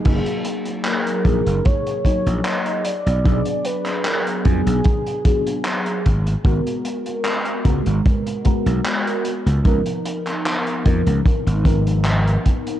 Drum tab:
CC |x---------------|----------------|----------------|----------------|
HH |xxxxxxxxxxxxxxxx|xxxxxxxxxxxxxxxx|xxxxxxxxxxxxxxxx|xxxxxxxxxxxxxxxx|
CP |----x-------x---|---xx-------x---|----x-------x---|---xx-------x---|
BD |o-----o-o-o-----|o-----o-o-o---o-|o-----o-o-o-----|o-----o-o-o---o-|